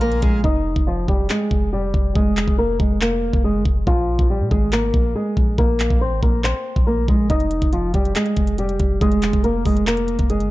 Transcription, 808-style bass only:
0.00 0.21 A#1 loud
0.23 0.43 A#1 loud
0.44 0.75 F1 loud
0.76 1.07 F1 loud
1.08 1.29 F1 loud
1.51 1.92 F1 loud
1.94 2.15 F1 loud
2.15 2.46 F1 loud
2.48 2.78 F1 loud
2.80 3.31 F1 loud
3.33 3.56 F1 loud
3.55 3.65 G1 loud
3.65 3.86 F1 loud
3.87 4.18 A#1 loud
4.19 4.42 A#1 loud
4.40 4.51 A#2 loud
4.51 4.92 G#1 loud
4.94 5.15 A#1 loud
5.37 5.57 A#1 loud
5.58 5.89 A#1 loud
5.90 6.14 A#1 loud
6.12 6.22 G#1 loud
6.23 6.54 A#1 loud
6.76 7.07 A#1 loud
7.08 7.29 A#1 loud
7.30 7.61 F1 loud
7.62 7.93 F1 loud
7.94 8.15 F1 loud
8.37 8.78 F1 loud
8.80 9.00 F1 loud
9.01 9.32 F1 loud
9.33 9.64 F1 loud
9.66 10.17 F1 loud
10.19 10.42 F1 loud
10.41 10.51 G1 loud

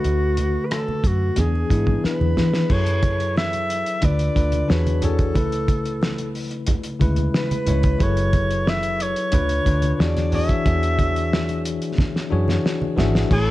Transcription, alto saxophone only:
0.00 0.67 F#4 medium
0.66 0.75 B4 medium
0.73 1.09 A4 medium
1.07 1.42 F#4 medium
1.40 2.05 G#4 medium
2.06 2.74 B4 medium
2.72 3.37 C#5 medium
3.38 4.06 E5 loud
4.05 4.73 D5 medium
4.71 5.03 B4 medium
5.05 6.32 A4 medium
7.37 8.04 B4 medium
8.03 8.71 C#5 loud
8.69 9.04 E5 loud
9.02 9.95 C#5 loud
9.95 10.03 C#5 medium
10.01 10.37 D5 medium
10.35 11.66 E5 loud
13.33 13.51 A4 loud

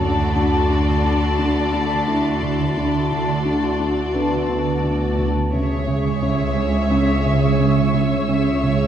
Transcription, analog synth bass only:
0.01 0.22 D3 medium
0.36 0.56 D3 soft
0.70 0.91 D3 medium
1.04 1.25 D4 soft
1.39 1.60 D3 medium
1.74 1.94 D3 soft
2.08 2.29 D3 soft
2.43 2.63 D3 soft
2.77 2.98 D3 medium
3.12 3.32 D3 soft
3.46 3.66 D3 soft
3.80 4.01 D4 soft
4.15 4.36 D3 medium
4.49 4.70 D3 soft
4.84 5.05 D3 soft
5.19 5.39 D3 soft
5.53 5.74 C#3 medium
5.88 6.08 C#3 soft
6.22 6.43 C#3 medium
6.57 6.77 C#4 soft
6.91 7.12 C#3 medium
7.26 7.47 C#3 soft
7.60 7.81 C#3 soft
7.94 8.15 C#3 soft
8.29 8.49 C#3 medium
8.63 8.84 C#3 soft

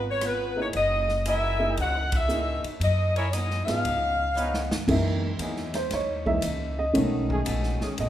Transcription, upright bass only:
0.00 0.70 G#1 medium
0.74 1.73 F#1 medium
1.78 2.61 C#2 medium
2.64 muted upright bass stroke soft
2.80 3.63 F#2 medium
3.68 3.84 G#2 medium
3.85 4.68 C#2 medium
4.71 4.87 G2 medium
4.88 5.39 F#2 medium
5.39 5.90 E2 medium
5.93 6.43 D#2 medium
6.44 6.94 C#2 medium
6.97 7.46 B1 medium
7.48 7.80 A#1 medium
7.82 muted upright bass stroke soft
7.99 8.09 A1 medium

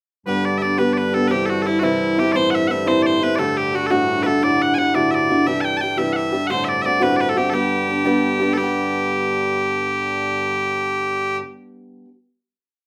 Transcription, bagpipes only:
0.27 0.45 B4 medium
0.45 0.58 D5 medium
0.58 0.62 E5 medium
0.62 0.78 D5 medium
0.78 0.93 B4 medium
0.93 0.97 D5 medium
0.97 1.14 B4 medium
1.14 1.28 A4 medium
1.28 1.46 G4 medium
1.28 1.31 B4 medium
1.46 1.62 F#4 medium
1.46 1.50 A4 medium
1.62 1.66 A4 medium
1.66 1.79 E4 medium
1.79 1.84 F#4 medium
1.84 2.19 E4 medium
2.19 2.32 G4 medium
2.32 2.50 C5 loud
2.32 2.36 D5 loud
2.50 2.55 F#5 medium
2.55 2.67 E5 medium
2.67 2.88 E5 medium
2.67 2.71 F#5 medium
2.88 3.02 C5 medium
3.02 3.23 C5 medium
3.02 3.06 D5 medium
3.23 3.35 B4 medium
3.35 3.57 A4 medium
3.35 3.39 D5 medium
3.57 3.75 G4 medium
3.75 3.86 F#4 medium
3.86 3.91 A4 medium
3.91 4.23 F#4 medium
4.23 4.43 A4 medium
4.23 4.27 B4 medium
4.43 4.62 D5 medium
4.62 4.74 F#5 medium
4.74 4.78 G#5 medium
4.78 4.95 F#5 medium
4.95 5.11 D5 medium
5.11 5.47 D5 medium
5.11 5.15 E5 medium
5.47 5.61 E5 medium
5.61 5.77 G5 medium
5.61 5.64 A5 medium
5.77 5.98 G5 medium
5.77 5.81 A5 medium
5.98 6.13 E5 medium
6.13 6.47 E5 medium
6.13 6.16 F#5 medium
6.47 6.65 C5 medium
6.47 6.50 F#5 medium
6.65 6.69 E5 medium
6.69 6.82 D5 medium
6.82 7.02 D5 loud
6.82 6.86 E5 loud
7.02 7.16 B4 medium
7.16 7.20 D5 medium
7.20 7.29 B4 medium
7.29 7.38 A4 medium
7.38 7.50 G4 medium
7.50 8.53 G4 medium
7.50 7.54 A4 medium
8.53 8.58 A4 medium
8.58 11.39 G4 medium

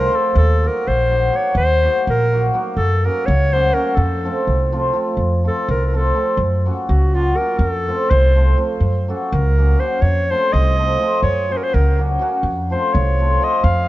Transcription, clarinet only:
0.00 0.17 A#4 loud
0.15 0.36 A4 medium
0.37 0.69 A4 medium
0.67 0.89 A#4 medium
0.88 1.37 C5 medium
1.36 1.56 C#5 medium
1.57 2.04 C5 loud
2.10 2.50 A#4 medium
2.77 3.07 A4 medium
3.05 3.27 A#4 medium
3.26 3.54 C#5 loud
3.53 3.75 C5 loud
3.74 3.97 A#4 medium
3.95 4.74 A4 medium
5.47 5.68 A4 medium
5.71 5.86 A#4 medium
5.86 5.98 A#4 medium
5.97 6.39 A4 medium
6.89 7.16 F#4 medium
7.14 7.38 F4 medium
7.37 7.58 A#4 medium
7.58 7.69 A#4 medium
7.69 8.12 A4 medium
8.10 8.58 C5 medium
9.09 9.35 A4 medium
9.33 9.81 A#4 medium
9.80 10.03 C5 medium
10.01 10.32 C#5 medium
10.30 10.54 C5 medium
10.53 11.22 D#5 loud
11.23 11.54 C#5 medium
11.52 11.58 C5 medium
11.57 11.65 A#4 medium
11.63 11.75 C5 medium
11.74 12.00 A#4 medium
12.72 12.95 C5 medium
12.93 13.45 C#5 medium
13.44 13.65 D#5 medium
13.64 13.88 F5 medium

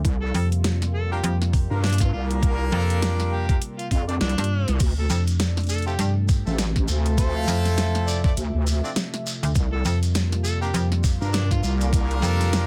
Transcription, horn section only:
1.11 1.18 A#3 medium
1.11 1.18 D4 medium
1.11 1.18 F4 medium
1.11 1.18 G4 medium
1.11 1.18 A#4 loud
1.71 1.82 A#3 medium
1.71 1.82 D4 medium
1.71 1.82 F4 medium
1.71 1.82 G4 medium
1.71 1.82 A#4 medium
2.13 3.45 A#3 loud
2.13 3.45 D4 loud
2.13 3.45 F4 loud
2.13 3.45 G4 loud
2.13 3.45 A#4 loud
3.49 3.56 A#3 medium
3.49 3.56 D4 loud
3.49 3.56 F4 medium
3.49 3.56 G4 medium
3.49 3.56 A#4 loud
4.09 4.16 D4 medium
4.09 4.16 F4 medium
4.09 4.16 G4 medium
4.09 4.16 D5 loud
5.87 5.94 A3 medium
5.87 5.94 C4 medium
5.87 5.94 E4 medium
5.87 5.94 F4 medium
5.87 5.94 A4 loud
6.46 6.57 A3 medium
6.46 6.57 C4 medium
6.46 6.58 E4 medium
6.46 6.57 F4 medium
6.46 6.57 A4 medium
6.88 8.20 A3 loud
6.88 8.20 C4 loud
6.88 8.20 E4 loud
6.88 8.20 F4 loud
6.88 8.20 A4 loud
8.24 8.31 A3 loud
8.24 8.31 C4 medium
8.24 8.31 E4 medium
8.24 8.31 F4 medium
8.24 8.31 A4 loud
8.84 8.91 C4 medium
8.84 8.91 D4 medium
8.84 8.91 E4 medium
8.84 8.91 F4 medium
8.84 8.91 D5 loud
10.62 10.69 A#3 medium
10.62 10.69 D4 medium
10.62 10.69 F4 medium
10.62 10.69 G4 medium
10.62 10.69 A#4 loud
11.21 11.33 A#3 medium
11.21 11.33 D4 medium
11.21 11.33 F4 medium
11.21 11.33 G4 medium
11.21 11.33 A#4 medium
11.63 12.67 A#3 loud
11.63 12.67 D4 loud
11.63 12.67 F4 loud
11.63 12.67 G4 loud
11.63 12.67 A#4 loud

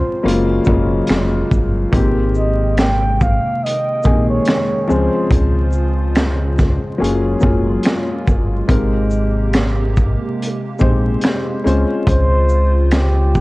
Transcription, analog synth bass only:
0.25 0.59 F#1 loud
0.67 1.02 F#1 medium
1.10 1.44 F1 medium
1.52 1.86 G1 loud
1.93 3.40 G#1 loud
4.06 4.40 A#1 medium
4.90 5.09 C#2 loud
5.31 6.78 C#2 loud
7.01 7.35 F#1 loud
7.44 7.78 F#1 medium
8.28 8.62 G1 medium
8.70 10.16 G#1 loud
10.82 11.16 A#1 medium
11.66 11.85 C#2 loud
12.07 13.40 C#2 loud

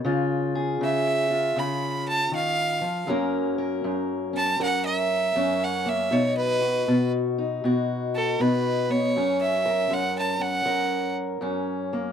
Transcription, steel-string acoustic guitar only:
0.05 0.80 C#3 medium
0.05 1.29 F4 medium
0.55 1.57 G#4 medium
0.81 1.55 C#3 medium
1.30 3.05 F4 medium
1.56 2.31 C#3 medium
2.31 2.82 D#3 medium
2.81 3.07 F3 medium
3.07 3.83 F#2 medium
3.07 6.58 F#3 medium
3.07 5.84 A#3 medium
3.07 4.32 C#4 medium
3.07 3.57 A#4 medium
3.58 4.59 A#4 medium
3.84 4.58 F#2 medium
4.33 5.35 C#4 soft
4.59 5.34 F#2 medium
4.59 6.08 A#4 medium
5.36 6.11 F#2 medium
5.36 6.12 C#4 medium
5.86 6.09 A#3 medium
6.11 6.87 B2 medium
6.11 7.37 D#4 medium
6.61 7.65 F#4 medium
6.88 7.63 B2 medium
7.38 8.40 D#4 medium
7.64 8.39 B2 medium
7.64 9.65 F#4 medium
8.40 9.15 B2 medium
8.40 9.12 D#4 medium
8.90 9.12 B3 medium
9.16 9.90 F#2 medium
9.16 10.38 C#4 medium
9.66 10.65 A#4 medium
9.91 10.65 F#2 medium
10.39 11.41 C#4 soft
10.65 11.40 F#2 medium
10.65 12.12 A#4 medium
11.41 12.12 F#2 medium
11.41 12.12 C#4 medium
11.93 12.12 A#3 medium

